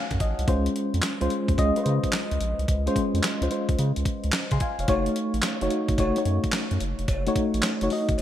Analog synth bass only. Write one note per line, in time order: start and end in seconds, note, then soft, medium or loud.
0.11 0.18 F#2 medium
0.20 0.34 A1 medium
0.39 0.46 C2 medium
0.48 0.69 C#2 loud
0.94 1.01 F2 medium
1.22 1.28 C#2 loud
1.49 1.56 D#2 medium
1.58 1.72 C#2 loud
1.86 1.99 C#3 medium
2.32 2.38 C#2 medium
2.41 2.54 A#1 medium
2.59 2.66 C2 medium
2.68 2.89 C#2 loud
3.14 3.21 F2 medium
3.42 3.48 C#2 medium
3.69 3.76 C#2 medium
3.79 3.92 C#3 loud
3.97 4.04 C#2 medium
4.24 4.31 C#2 loud
4.52 4.58 C#3 medium
4.79 4.86 F1 medium
4.88 5.09 F#1 loud
5.34 5.41 A1 medium
5.62 5.69 F#1 loud
5.89 5.96 G#1 medium
5.98 6.12 F#1 loud
6.26 6.39 F#2 loud
6.71 6.78 F#2 medium
6.81 6.94 F#1 medium
6.99 7.06 F1 medium
7.08 7.29 F#1 loud
7.54 7.61 A1 loud
7.82 7.89 F#1 loud
8.09 8.16 G#1 medium
8.19 8.22 F#1 medium